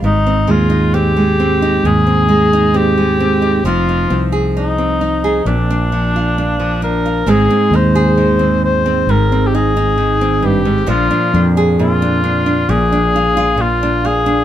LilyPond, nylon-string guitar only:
\new Staff \with { instrumentName = "Nylon-string guitar" } { \time 4/4 \key aes \lydian \tempo 4 = 66 << { r16 c'8 ees'16 c'8 c'16 ees'8 c'8 ees'16 c'8 c'16 ees'16 | <c' ees'>16 ees'8 aes'16 ees'8 ees'16 aes'16 r16 d'8 f'16 d'8 d'16 f'16 | <aes c' ees'>16 c'16 ees'16 aes'8 c'8 c'8 c'16 ees'16 ees'8 c'8. | <f d'>16 d'16 d'16 aes'8 d'16 d'16 d'8 d'16 f'16 f'8 d'16 f'16 d'16 | } \\ { aes,8 aes8. aes8. aes,8 aes8. aes8. | f8 c'8. c'8. bes,8 f8. f8. | aes,4 ees4 aes,4 ees8 g,16 aes,16 | bes,4 bes,4 bes,4 bes,4 | } >> }